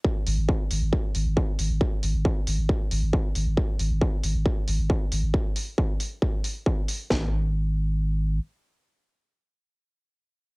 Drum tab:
HH |-o-o-o-o|-o-o-o-o|-o-o-o-o|-o-o-o-o|
SD |--------|--------|--------|--------|
BD |o-o-o-o-|o-o-o-o-|o-o-o-o-|o-o-o-o-|

HH |--------|--------|
SD |o-------|--------|
BD |o-------|--------|